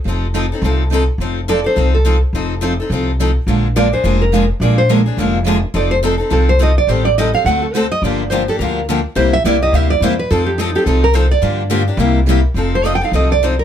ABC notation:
X:1
M:4/4
L:1/8
Q:"Swing" 1/4=211
K:Fmix
V:1 name="Nylon-string guitar"
z8 | z2 d c2 A2 z | z8 | z2 d c2 B2 z |
d c z6 | d c z2 A c e d | c d e f ^f A c e | d2 c A B2 z2 |
c =e d _e =e d c =B | A G E G A B c d- | d4 z4 | z c (3e g f e d c B |]
V:2 name="Steel-string acoustic guitar"
[F,CEA] z [F,CEA] [CEA] [F,CEA] z [F,CEA] z | [F,CEA] z [F,CEA] [CEA] [F,CEA] z [F,CEA] z | [F,CEA] z [F,CEA] [CEA] [F,CEA] z [F,CEA] z | [D,F,B,D_A] z [D,F,B,DA] [B,DA] [D,F,B,DA] z [D,F,B,DA] z |
[D,F,B,D_A] z [D,F,B,DA] [B,DA] [D,F,B,DA] z [D,F,B,DA] z | [F,CEA] z [F,CEA] [CEA] [F,CEA] z [F,CEA] z | [E,G,CGA] z [E,G,CGA] [CGA] [D,A,C^FA] z [D,A,CFA] z | [D,F,B,DG] z [D,F,B,DG] [B,DG] [D,F,B,DG] z [D,F,B,DG] z |
[C,G,B,=EG] z [C,G,B,EG] [B,EG] [C,G,B,EG] z [C,G,B,EG] z | [F,CEA] z [F,CEA] [CEA] [F,CEA] z [F,CEA] z | [D,F,B,DG] z [D,F,B,DG] [B,DG] [C,G,B,=EG] z [C,G,B,EG] z | [F,CEA] z [F,CEA] [CEA] [F,CEA] z [F,CEA] z |]
V:3 name="Steel-string acoustic guitar"
[F,CEA] z [F,CEA] z [F,CEA] z [F,CEA] z | [F,CEA] z [F,CEA] z [F,CEA] z [F,CEA] z | [F,CEA] z [F,CEA] z [F,CEA] z [F,CEA] z | [F,_A,DFB] z [F,A,DFB] z [F,A,DFB] z [F,A,DFB] z |
[F,_A,DFB] z [F,A,DFB] z [F,A,DFB] z [F,A,DFB] z | [F,CEA] z [F,CEA] z [F,CEA] z [F,CEA] z | [E,G,CGA] z [E,G,CGA] z [D,A,C^FA] z [D,A,CFA] z | [D,F,B,DG] z [D,F,B,DG] z [D,F,B,DG] z [D,F,B,DG] z |
[C,G,B,=EG] z [C,G,B,EG] z [C,G,B,EG] z [C,G,B,EG] z | [F,CEA] z [F,CEA] z [F,CEA] z [F,CEA] z | [D,F,B,DG] z [D,F,B,DG] z [C,G,B,=EG] z [C,G,B,EG] z | [F,CEA] z [F,CEA] z [F,CEA] z [F,CEA] z |]
V:4 name="Upright bass" clef=bass
F,,,4 C,,4 | F,,,4 C,,4 | F,,,4 C,,4 | B,,,4 F,,,4 |
B,,,4 F,,,4 | F,,,4 C,,4 | A,,,4 D,,4 | G,,,4 D,,4 |
C,,2 C,,2 D,,2 =E,,2 | F,,4 C,,4 | G,,4 C,,4 | F,,,4 C,,4 |]